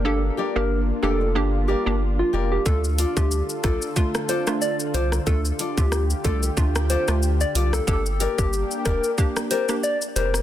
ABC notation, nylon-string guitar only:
X:1
M:4/4
L:1/8
Q:"Swing 16ths" 1/4=92
K:Dm
V:1 name="Nylon-string guitar"
z [GBd] z [GBd] z [GBd] z [GBd] | z [FAd] z [FAd] z [FAd] z [FAd] | z [FAd] z [FAd] z [FAd] z [FAd] | z [GBd] z [GBd] z [GBd] z [GBd] |]